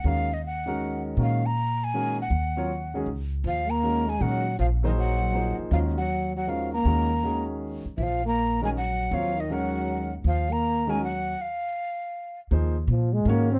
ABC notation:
X:1
M:3/4
L:1/16
Q:"Swing" 1/4=159
K:Ebdor
V:1 name="Flute"
f2 e2 g6 z2 | f2 b4 a4 g2- | g6- g z4 z | f2 b4 a2 g4 |
f2 e2 g6 z2 | f2 g4 g2 f2 b2- | b6 z4 z3/2 _f/2 | f2 b4 a2 g4 |
f2 e2 g6 z2 | f2 b4 a2 g4 | f8- f2 z2 | z12 |]
V:2 name="Grand piano"
[E,A,DGB]2 z4 [E,A,DGB]6 | [E,A,DGB]2 z6 [E,A,DGB]2 z2 | z2 [G,CFBd]2 z2 [E,A,DGA]2 z4 | z4 [E,A,DGB]2 z2 [E,A,DGB]2 z2 |
z2 [G,B,EAc]6 [F,B,EAc]4 | [E,A,DGB]2 z6 [E,A,DGB]2 z2 | [E,A,DGB]2 z2 [E,A,DGA]6 z2 | z6 [E,A,DGB]2 z4 |
[G,CFBd]2 z2 [E,A,DGB]6 z2 | z6 [E,A,DGB]2 z4 | z12 | [F,B,EAc]2 z6 [E,A,DGd]2 z2 |]
V:3 name="Trombone" clef=bass
z12 | z12 | z12 | F,2 B,4 A,2 G,4 |
F,2 E,2 G,6 z2 | F,2 G,4 G,2 F,2 B,2- | B,6 z4 z3/2 _F,/2 | F,2 B,4 A,2 G,4 |
F,2 E,2 G,6 z2 | F,2 B,4 A,2 G,4 | z12 | z4 F,2 A,2 B,2 C2 |]
V:4 name="Upright bass" clef=bass
E,,12 | B,,12 | E,,8 D,,4 | E,,8 B,,4 |
B,,,8- B,,,2 z2 | E,,12 | E,,8- E,,2 z2 | B,,,12 |
E,,12 | E,,12 | z12 | E,,4 B,,4 A,,4 |]